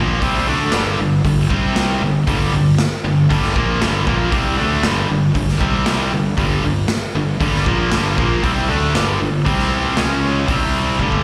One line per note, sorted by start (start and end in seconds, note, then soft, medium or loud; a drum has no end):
0.00 0.20 A#1 medium
0.00 0.21 A#2 medium
0.00 0.21 F3 medium
0.00 0.21 A#3 loud
0.22 0.46 C2 loud
0.22 0.47 C3 loud
0.22 0.47 G3 loud
0.22 0.47 C4 loud
0.22 kick loud
0.22 open hi-hat medium
0.47 0.72 D2 loud
0.47 0.72 D3 medium
0.47 0.73 A3 medium
0.47 0.73 D4 medium
0.72 0.98 G1 medium
0.72 0.98 G2 medium
0.72 0.98 D3 loud
0.72 0.99 G3 medium
0.72 snare loud
0.72 open hi-hat medium
0.99 1.23 G1 medium
0.99 1.20 G2 medium
0.99 1.20 D3 medium
1.25 1.49 G1 medium
1.25 1.46 G2 medium
1.25 1.46 D3 medium
1.25 kick medium
1.25 open hi-hat medium
1.49 1.98 C2 medium
1.49 2.01 C3 medium
1.49 2.01 G3 loud
1.49 2.01 C4 loud
1.49 kick loud
1.76 snare loud
1.76 open hi-hat medium
2.01 2.26 G1 medium
2.01 2.22 G2 medium
2.01 2.22 D3 medium
2.27 2.51 G1 medium
2.27 2.52 G2 medium
2.27 2.52 D3 loud
2.27 2.52 G3 loud
2.27 kick loud
2.27 open hi-hat medium
2.53 2.77 G1 medium
2.53 2.74 G2 medium
2.53 2.74 D3 medium
2.79 snare loud
2.79 open hi-hat medium
3.04 3.28 G1 medium
3.04 3.25 G2 medium
3.04 3.25 D3 medium
3.29 3.54 G1 medium
3.29 3.55 G2 loud
3.29 3.54 D3 loud
3.29 3.54 G3 loud
3.29 kick loud
3.29 open hi-hat medium
3.43 snare soft
3.55 3.80 A#1 medium
3.55 3.80 A#2 medium
3.55 3.80 F3 loud
3.55 3.80 A#3 loud
3.55 kick loud
3.81 4.06 G1 medium
3.81 4.06 G2 medium
3.81 4.06 D3 medium
3.81 4.06 G3 loud
3.81 snare loud
3.81 open hi-hat medium
4.07 4.31 A#1 medium
4.07 4.32 A#2 medium
4.07 4.32 F3 medium
4.07 4.32 A#3 medium
4.07 kick loud
4.32 4.57 C2 loud
4.32 4.56 C3 medium
4.32 4.57 G3 medium
4.32 4.57 C4 medium
4.32 kick loud
4.32 open hi-hat medium
4.57 4.82 D2 medium
4.57 4.82 D3 medium
4.57 4.83 A3 medium
4.57 4.83 D4 medium
4.83 5.08 G1 medium
4.83 5.07 G2 medium
4.83 5.08 D3 loud
4.83 5.09 G3 loud
4.83 snare loud
4.83 open hi-hat medium
5.09 5.34 G1 medium
5.09 5.30 G2 medium
5.09 5.30 D3 medium
5.34 5.59 G1 medium
5.34 5.55 G2 medium
5.34 5.55 D3 medium
5.34 kick medium
5.34 open hi-hat medium
5.49 snare soft
5.59 6.09 C2 medium
5.59 6.11 C3 loud
5.59 6.11 G3 loud
5.59 6.11 C4 loud
5.59 kick loud
5.86 snare loud
5.86 open hi-hat medium
6.11 6.36 G1 medium
6.11 6.32 G2 medium
6.11 6.32 D3 medium
6.38 6.62 G1 loud
6.38 6.63 G2 medium
6.38 6.63 D3 loud
6.38 6.63 G3 medium
6.38 kick loud
6.38 open hi-hat medium
6.63 6.87 G1 medium
6.63 6.84 G2 medium
6.63 6.84 D3 medium
6.88 snare loud
6.88 open hi-hat medium
7.15 7.39 G1 medium
7.15 7.35 G2 medium
7.15 7.36 D3 medium
7.40 7.65 G1 loud
7.40 7.65 G2 medium
7.40 7.66 D3 medium
7.40 7.66 G3 loud
7.40 kick loud
7.40 open hi-hat medium
7.54 snare soft
7.66 7.90 A#1 medium
7.66 7.91 A#2 loud
7.66 7.91 F3 loud
7.66 7.92 A#3 loud
7.66 kick loud
7.91 8.16 G1 medium
7.91 8.16 G2 loud
7.91 8.17 D3 loud
7.91 8.17 G3 medium
7.91 snare loud
7.91 open hi-hat medium
8.17 8.42 A#1 medium
8.17 8.42 A#2 medium
8.17 8.42 F3 loud
8.17 8.42 A#3 loud
8.17 kick loud
8.43 8.68 C2 loud
8.43 8.68 C3 medium
8.43 8.68 G3 medium
8.43 8.68 C4 loud
8.43 kick loud
8.43 open hi-hat medium
8.68 8.93 D2 medium
8.68 8.93 D3 medium
8.68 8.94 A3 medium
8.68 8.94 D4 loud
8.95 9.19 G1 medium
8.95 9.18 G2 medium
8.95 9.19 D3 medium
8.95 9.20 G3 loud
8.95 snare loud
8.95 open hi-hat medium
9.19 9.45 G1 medium
9.19 9.40 G2 medium
9.19 9.41 D3 medium
9.45 9.94 C2 loud
9.45 9.96 C3 medium
9.45 9.96 G3 medium
9.45 9.96 C4 loud
9.45 kick loud
9.45 open hi-hat medium
9.59 snare soft
9.97 10.45 C#2 medium
9.97 10.47 C#3 medium
9.97 10.47 G#3 medium
9.97 10.48 C#4 loud
9.97 snare loud
9.97 open hi-hat medium
10.48 10.96 C2 loud
10.48 10.99 C3 medium
10.48 10.99 G3 loud
10.48 10.99 C4 loud
10.48 kick loud
10.48 open hi-hat medium
10.99 11.23 G1 medium
10.99 11.23 G2 medium
10.99 11.23 D3 medium
10.99 11.23 G3 loud
10.99 kick medium
11.12 kick medium